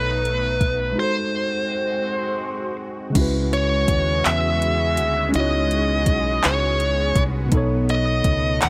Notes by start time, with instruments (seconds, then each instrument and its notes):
Already playing: fingered electric bass B1, tine electric piano B2 B3 D#4 A4 C#5, analog synth pad A3 B3 D#4, lead electric guitar B4
0.25 closed hi-hat
0.61 kick, closed hi-hat
0.92 tine electric piano G#3 D#4
0.97 analog synth pad G#3 C4 F#4, tine electric piano F#4, lead electric guitar C5
1.01 tine electric piano A4 C5
3.10 tine electric piano C#3 G#3
3.15 fingered electric bass C#2, analog synth pad G#3 B3 C#4 F#4 G#4, tine electric piano C#4 E4, kick, closed hi-hat, crash
3.19 tine electric piano F#4 B4
3.53 lead electric guitar C#5, closed hi-hat
3.88 fingered electric bass D#2, kick, closed hi-hat
4.25 fingered electric bass E2, lead electric guitar E5, clap, closed hi-hat
4.62 closed hi-hat
4.97 fingered electric bass D2, closed hi-hat
5.29 tine electric piano G#3 C#4
5.33 fingered electric bass C#2, tine electric piano D#4 E4, lead electric guitar D#5, closed hi-hat
5.38 tine electric piano F#4 C#5
5.71 closed hi-hat
6.06 fingered electric bass B1, kick, closed hi-hat
6.44 fingered electric bass C#2, lead electric guitar C#5, clap, closed hi-hat
6.80 closed hi-hat
7.16 fingered electric bass C2, kick, closed hi-hat
7.46 tine electric piano B2 B3
7.51 fingered electric bass B1, analog synth pad A3, tine electric piano D#4 A4, kick, closed hi-hat
7.57 tine electric piano C#5
7.89 lead electric guitar D#5, closed hi-hat
8.24 fingered electric bass C#2, kick, closed hi-hat
8.62 fingered electric bass D#2, lead electric guitar F#5, clap, closed hi-hat